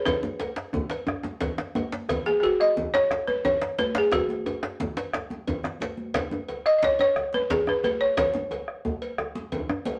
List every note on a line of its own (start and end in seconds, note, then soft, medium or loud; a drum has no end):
0.05 0.53 B4 medium
0.05 bombo rim medium
0.05 bombo low medium
0.05 cowbell medium
0.05 djembe tone medium
0.05 djembe bass medium
0.05 low conga medium
0.23 djembe slap soft
0.23 djembe tone medium
0.23 high conga medium
0.39 cowbell soft
0.39 djembe slap medium
0.39 high conga soft
0.39 djembe tone medium
0.56 bombo rim medium
0.56 djembe slap medium
0.73 bombo low medium
0.73 djembe tone medium
0.73 high conga medium
0.73 low conga medium
0.73 djembe bass medium
0.90 cowbell soft
0.90 djembe slap medium
1.07 bombo rim medium
1.07 djembe tone loud
1.07 djembe tone medium
1.23 djembe slap soft
1.23 djembe tone medium
1.23 high conga medium
1.41 bombo low medium
1.41 cowbell soft
1.41 djembe slap medium
1.41 djembe bass medium
1.41 low conga medium
1.58 bombo rim medium
1.58 djembe slap medium
1.58 high conga soft
1.75 cowbell soft
1.75 djembe slap soft
1.75 high conga medium
1.75 djembe tone medium
1.92 djembe slap soft
1.92 djembe slap medium
2.09 bombo rim medium
2.09 bombo low medium
2.09 cowbell medium
2.09 djembe bass medium
2.09 low conga medium
2.26 2.39 G#4 medium
2.26 djembe slap soft
2.26 high conga soft
2.40 2.51 F#4 medium
2.40 2.44 G#4 medium
2.40 cowbell soft
2.40 djembe tone medium
2.40 high conga soft
2.60 2.95 D#5 medium
2.60 bombo rim medium
2.76 bombo low medium
2.76 high conga medium
2.76 djembe bass medium
2.76 low conga medium
2.94 3.25 C#5 medium
2.94 djembe slap medium
3.11 bombo rim medium
3.11 djembe slap medium
3.11 djembe tone medium
3.27 3.45 B4 medium
3.27 djembe slap soft
3.27 high conga medium
3.45 3.80 C#5 medium
3.45 cowbell soft
3.45 djembe tone medium
3.45 djembe bass medium
3.45 low conga medium
3.62 bombo rim medium
3.62 djembe slap medium
3.62 high conga soft
3.78 3.94 B4 medium
3.78 cowbell soft
3.78 djembe slap medium
3.78 djembe slap soft
3.78 high conga medium
3.78 djembe tone medium
3.95 4.05 G#4 medium
3.95 djembe slap loud
4.12 5.10 F#4 medium
4.12 bombo rim loud
4.12 bombo low medium
4.12 cowbell medium
4.12 djembe slap medium
4.12 djembe bass medium
4.12 low conga medium
4.29 djembe slap soft
4.29 high conga medium
4.46 cowbell soft
4.46 djembe tone medium
4.63 bombo rim medium
4.63 djembe slap medium
4.80 djembe slap medium
4.80 high conga medium
4.80 low conga medium
4.80 djembe bass medium
4.97 cowbell soft
4.97 djembe slap medium
5.13 bombo rim medium
5.13 djembe slap medium
5.13 high conga soft
5.13 djembe tone medium
5.30 djembe slap soft
5.30 high conga soft
5.47 bombo low medium
5.47 cowbell soft
5.47 djembe tone medium
5.47 low conga medium
5.47 djembe bass soft
5.63 bombo rim medium
5.63 djembe slap medium
5.63 low conga soft
5.80 cowbell soft
5.80 djembe slap medium
5.80 high conga soft
5.80 djembe tone medium
5.97 high conga medium
6.14 bombo rim medium
6.14 bombo low medium
6.14 cowbell medium
6.14 djembe slap medium
6.14 low conga medium
6.14 djembe bass medium
6.31 djembe slap soft
6.31 high conga medium
6.31 djembe tone medium
6.48 cowbell soft
6.48 djembe tone medium
6.66 6.72 D#5 medium
6.66 bombo rim medium
6.78 6.83 D#5 medium
6.82 6.99 C#5 medium
6.82 djembe slap medium
6.82 djembe bass medium
6.82 low conga medium
6.99 7.31 C#5 medium
6.99 cowbell soft
6.99 djembe tone medium
7.16 bombo rim medium
7.16 djembe tone medium
7.33 7.51 B4 medium
7.33 djembe slap soft
7.33 high conga medium
7.50 7.68 G#4 medium
7.50 bombo low medium
7.50 cowbell soft
7.50 djembe slap medium
7.50 djembe bass medium
7.50 low conga medium
7.67 7.83 B4 medium
7.67 bombo rim medium
7.67 djembe tone medium
7.67 high conga soft
7.84 8.01 B4 medium
7.84 cowbell soft
7.84 djembe slap soft
7.84 djembe tone medium
7.84 high conga medium
8.01 8.17 C#5 medium
8.01 djembe slap soft
8.17 8.65 C#5 medium
8.17 bombo rim medium
8.17 bombo low medium
8.17 cowbell medium
8.17 djembe slap medium
8.17 djembe bass medium
8.17 low conga medium
8.34 djembe slap medium
8.34 djembe tone medium
8.34 high conga medium
8.51 cowbell soft
8.51 djembe tone medium
8.51 high conga soft
8.68 bombo rim medium
8.85 bombo low medium
8.85 high conga medium
8.85 djembe bass medium
9.02 cowbell soft
9.18 bombo rim medium
9.18 djembe tone medium
9.35 djembe slap medium
9.35 high conga medium
9.52 bombo low medium
9.52 cowbell soft
9.52 low conga medium
9.52 djembe bass medium
9.69 bombo rim medium
9.69 high conga soft
9.69 djembe tone medium
9.85 cowbell soft
9.85 djembe slap soft
9.85 high conga medium
9.85 djembe tone medium